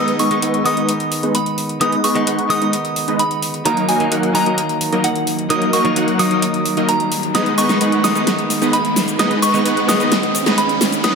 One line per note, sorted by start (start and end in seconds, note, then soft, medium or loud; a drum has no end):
0.00 0.28 D#3 medium
0.00 0.17 G#3 loud
0.00 0.28 G#3 medium
0.00 3.62 G#3 medium
0.00 0.17 B3 medium
0.00 0.28 B3 medium
0.00 0.17 D#4 medium
0.00 0.28 D#4 medium
0.00 11.00 D#4 medium
0.00 0.17 B4 medium
0.00 3.62 B4 medium
0.00 0.17 D#5 loud
0.00 0.20 D#6 loud
0.00 riser medium
0.08 closed hi-hat soft
0.19 0.40 G#3 loud
0.19 0.40 B3 medium
0.19 0.40 D#4 medium
0.19 0.40 B4 medium
0.19 0.40 D#5 loud
0.19 0.67 C#6 loud
0.19 open hi-hat loud
0.30 0.62 D#3 medium
0.30 0.63 G#3 medium
0.30 0.63 B3 medium
0.30 0.63 D#4 medium
0.30 closed hi-hat soft
0.42 0.74 G#3 medium
0.42 0.74 B3 medium
0.42 0.74 D#4 medium
0.42 0.74 B4 medium
0.42 0.74 F#5 medium
0.42 closed hi-hat medium
0.54 closed hi-hat soft
0.64 1.78 D#3 medium
0.64 1.78 G#3 medium
0.64 1.78 B3 medium
0.64 1.79 D#4 medium
0.64 1.37 D#6 loud
0.64 open hi-hat medium
0.77 0.91 G#3 medium
0.77 0.91 B3 medium
0.77 0.91 D#4 medium
0.77 0.91 B4 medium
0.77 0.91 D#5 medium
0.77 closed hi-hat soft
0.89 closed hi-hat medium
1.00 closed hi-hat soft
1.12 open hi-hat medium
1.23 1.37 G#3 medium
1.23 1.37 B3 medium
1.23 1.37 D#4 medium
1.23 1.37 B4 medium
1.23 1.37 D#5 loud
1.23 closed hi-hat soft
1.35 1.82 B5 loud
1.35 closed hi-hat medium
1.46 closed hi-hat soft
1.58 open hi-hat medium
1.69 closed hi-hat soft
1.80 1.94 D#3 medium
1.80 2.01 G#3 loud
1.80 1.95 G#3 medium
1.80 2.01 B3 medium
1.80 1.95 B3 medium
1.80 2.01 D#4 medium
1.80 1.95 D#4 medium
1.80 2.01 B4 medium
1.80 2.01 D#5 loud
1.80 2.05 D#6 loud
1.80 closed hi-hat medium
1.92 closed hi-hat soft
2.04 2.24 G#3 loud
2.04 2.24 B3 medium
2.04 2.24 D#4 medium
2.04 2.24 B4 medium
2.04 2.24 D#5 loud
2.04 2.52 C#6 loud
2.04 open hi-hat loud
2.15 2.37 D#3 medium
2.15 2.37 G#3 medium
2.15 2.38 B3 medium
2.15 2.38 D#4 medium
2.15 closed hi-hat soft
2.27 2.59 G#3 medium
2.27 2.59 B3 medium
2.27 2.59 D#4 medium
2.27 2.59 B4 medium
2.27 2.59 F#5 medium
2.27 closed hi-hat medium
2.39 closed hi-hat soft
2.49 3.62 D#3 medium
2.49 3.63 G#3 medium
2.49 3.63 B3 medium
2.49 3.63 D#4 medium
2.49 3.21 D#6 loud
2.49 open hi-hat loud
2.62 2.76 G#3 medium
2.62 2.76 B3 medium
2.62 2.76 D#4 medium
2.62 2.76 B4 medium
2.62 2.76 D#5 medium
2.62 closed hi-hat soft
2.73 closed hi-hat medium
2.85 closed hi-hat soft
2.96 open hi-hat loud
3.08 3.22 G#3 medium
3.08 3.22 B3 medium
3.08 3.22 D#4 medium
3.08 3.22 B4 medium
3.08 3.22 D#5 loud
3.08 closed hi-hat soft
3.19 3.67 B5 loud
3.19 closed hi-hat medium
3.31 closed hi-hat soft
3.42 open hi-hat medium
3.54 closed hi-hat soft
3.65 3.97 D#3 medium
3.65 3.97 F#3 medium
3.65 3.86 F#3 medium
3.65 7.31 F#3 medium
3.65 3.86 A#3 medium
3.65 3.97 A#3 medium
3.65 3.86 D#4 medium
3.65 3.98 D#4 medium
3.65 3.86 A#4 medium
3.65 7.31 A#4 medium
3.65 3.86 D#5 loud
3.65 3.89 A#5 loud
3.65 closed hi-hat medium
3.77 closed hi-hat soft
3.89 4.09 F#3 loud
3.89 4.09 A#3 medium
3.89 4.09 D#4 medium
3.89 4.09 A#4 medium
3.89 4.09 D#5 loud
3.89 4.36 G#5 medium
3.89 open hi-hat loud
4.00 4.32 D#3 medium
4.00 4.32 F#3 medium
4.00 4.32 A#3 medium
4.00 4.32 D#4 medium
4.00 closed hi-hat soft
4.12 4.44 F#3 medium
4.12 4.44 A#3 medium
4.12 4.44 D#4 medium
4.12 4.44 A#4 medium
4.12 4.44 F#5 medium
4.12 closed hi-hat medium
4.23 closed hi-hat soft
4.34 5.47 D#3 medium
4.34 5.47 F#3 medium
4.34 5.48 A#3 medium
4.34 5.48 D#4 loud
4.34 5.00 A#5 loud
4.34 open hi-hat loud
4.46 4.60 F#3 medium
4.46 4.61 A#3 medium
4.46 4.60 D#4 medium
4.46 4.60 A#4 medium
4.46 4.60 D#5 medium
4.46 closed hi-hat soft
4.58 closed hi-hat medium
4.69 closed hi-hat soft
4.81 open hi-hat loud
4.92 5.07 F#3 medium
4.92 5.07 A#3 medium
4.92 5.07 D#4 medium
4.92 5.07 A#4 medium
4.92 5.07 D#5 loud
4.92 closed hi-hat soft
5.04 5.47 F#5 loud
5.04 closed hi-hat medium
5.16 closed hi-hat soft
5.27 open hi-hat loud
5.39 closed hi-hat soft
5.49 5.64 D#3 loud
5.49 5.64 F#3 medium
5.49 5.70 F#3 loud
5.49 5.70 A#3 medium
5.49 5.64 A#3 medium
5.49 5.70 D#4 medium
5.49 5.64 D#4 medium
5.49 5.70 A#4 medium
5.49 5.70 D#5 loud
5.49 5.74 D#6 loud
5.49 closed hi-hat medium
5.62 closed hi-hat soft
5.73 5.94 F#3 loud
5.73 5.94 A#3 medium
5.73 5.94 D#4 medium
5.73 5.94 A#4 medium
5.73 5.94 D#5 loud
5.73 6.21 C#6 loud
5.73 open hi-hat loud
5.84 6.06 D#3 medium
5.84 6.07 F#3 medium
5.84 6.07 A#3 medium
5.84 6.07 D#4 medium
5.84 closed hi-hat soft
5.96 6.28 F#3 medium
5.96 6.28 A#3 medium
5.96 6.28 D#4 medium
5.96 6.28 A#4 medium
5.96 6.28 F#5 medium
5.96 closed hi-hat medium
6.08 closed hi-hat soft
6.18 7.31 D#3 medium
6.18 7.32 F#3 medium
6.18 7.32 A#3 medium
6.18 7.33 D#4 medium
6.18 6.91 D#6 loud
6.18 open hi-hat loud
6.31 6.45 F#3 medium
6.31 6.45 A#3 medium
6.31 6.45 D#4 medium
6.31 6.45 A#4 medium
6.31 6.45 D#5 medium
6.31 closed hi-hat soft
6.42 closed hi-hat medium
6.54 closed hi-hat soft
6.66 open hi-hat loud
6.77 6.91 F#3 loud
6.77 6.91 A#3 medium
6.77 6.91 D#4 medium
6.77 6.91 A#4 medium
6.77 6.91 D#5 loud
6.77 closed hi-hat soft
6.89 7.32 A#5 medium
6.89 closed hi-hat medium
7.00 closed hi-hat soft
7.12 open hi-hat medium
7.23 closed hi-hat soft
7.34 7.66 D#3 medium
7.34 11.00 G#3 medium
7.34 7.55 G#3 medium
7.34 7.67 G#3 medium
7.34 7.55 B3 medium
7.34 7.67 B3 medium
7.34 7.55 D#4 medium
7.34 7.67 D#4 medium
7.34 7.55 B4 medium
7.34 11.15 B4 medium
7.34 7.55 D#5 loud
7.34 7.56 D#6 loud
7.34 snare soft
7.34 closed hi-hat medium
7.34 shaker soft
7.46 closed hi-hat soft
7.58 7.78 G#3 loud
7.58 7.78 B3 medium
7.58 7.78 D#4 medium
7.58 7.78 B4 medium
7.58 7.78 D#5 loud
7.58 8.05 C#6 loud
7.58 open hi-hat loud
7.58 shaker medium
7.69 8.01 D#3 medium
7.69 8.01 G#3 medium
7.69 8.01 B3 medium
7.69 8.02 D#4 medium
7.69 snare soft
7.69 closed hi-hat soft
7.69 shaker soft
7.81 8.13 G#3 medium
7.81 8.13 B3 medium
7.81 8.13 D#4 medium
7.81 8.13 B4 medium
7.81 8.13 F#5 medium
7.81 closed hi-hat medium
7.81 shaker soft
7.92 closed hi-hat soft
8.03 9.16 D#3 medium
8.03 9.16 G#3 medium
8.03 9.17 B3 medium
8.03 9.17 D#4 loud
8.03 8.75 D#6 loud
8.03 snare medium
8.03 open hi-hat loud
8.03 shaker medium
8.15 8.30 G#3 medium
8.15 8.30 B3 medium
8.15 8.30 D#4 medium
8.15 8.30 B4 medium
8.15 8.30 D#5 medium
8.15 closed hi-hat soft
8.15 shaker soft
8.27 snare soft
8.27 closed hi-hat medium
8.27 shaker soft
8.39 closed hi-hat soft
8.50 open hi-hat loud
8.50 shaker medium
8.62 8.76 G#3 medium
8.62 8.76 B3 medium
8.62 8.76 D#4 medium
8.62 8.76 B4 medium
8.62 8.76 D#5 loud
8.62 closed hi-hat soft
8.62 shaker soft
8.73 9.21 B5 loud
8.73 closed hi-hat medium
8.73 shaker soft
8.85 closed hi-hat soft
8.96 snare medium
8.96 open hi-hat medium
8.96 shaker medium
9.08 closed hi-hat soft
9.08 shaker soft
9.19 9.33 D#3 medium
9.19 9.33 G#3 medium
9.19 9.40 G#3 medium
9.19 9.40 B3 medium
9.19 9.33 B3 medium
9.19 9.40 D#4 medium
9.19 9.33 D#4 loud
9.19 9.40 B4 medium
9.19 9.40 D#5 loud
9.19 9.30 D#6 loud
9.19 snare medium
9.19 closed hi-hat medium
9.19 shaker soft
9.31 closed hi-hat soft
9.42 9.63 G#3 loud
9.42 9.63 B3 medium
9.42 9.63 D#4 loud
9.42 9.63 B4 medium
9.42 9.63 D#5 loud
9.42 9.85 C#6 loud
9.42 open hi-hat loud
9.42 shaker medium
9.53 9.76 D#3 medium
9.53 9.76 G#3 medium
9.53 9.76 B3 medium
9.53 9.76 D#4 loud
9.53 closed hi-hat soft
9.53 shaker soft
9.66 9.97 G#3 medium
9.66 9.97 B3 medium
9.66 9.97 D#4 medium
9.66 9.97 B4 medium
9.66 9.97 F#5 loud
9.66 closed hi-hat medium
9.66 shaker soft
9.77 closed hi-hat soft
9.87 11.01 D#3 medium
9.87 11.01 G#3 medium
9.87 11.01 B3 medium
9.87 11.02 D#4 medium
9.87 10.60 D#6 loud
9.87 snare medium
9.87 open hi-hat medium
9.87 shaker medium
10.00 10.14 G#3 medium
10.00 10.14 B3 medium
10.00 10.14 D#4 medium
10.00 10.14 B4 medium
10.00 10.14 D#5 medium
10.00 closed hi-hat soft
10.00 shaker soft
10.12 snare medium
10.12 closed hi-hat medium
10.12 shaker soft
10.23 closed hi-hat soft
10.35 open hi-hat loud
10.35 shaker medium
10.46 10.60 G#3 loud
10.46 10.60 B3 medium
10.46 10.60 D#4 medium
10.46 10.60 B4 medium
10.46 10.60 D#5 loud
10.46 snare medium
10.46 closed hi-hat soft
10.46 shaker soft
10.58 11.01 B5 loud
10.58 closed hi-hat medium
10.58 shaker soft
10.69 closed hi-hat soft
10.81 snare medium
10.81 open hi-hat medium
10.81 shaker medium
10.92 closed hi-hat soft
10.92 shaker soft
11.03 11.15 D#3 medium
11.03 11.15 F#3 medium
11.03 11.15 F#3 loud
11.03 11.15 B3 medium
11.03 11.15 D#4 medium
11.03 11.15 B4 medium
11.03 11.15 D#5 loud
11.03 11.14 D#6 loud
11.03 snare medium
11.03 closed hi-hat loud
11.03 shaker soft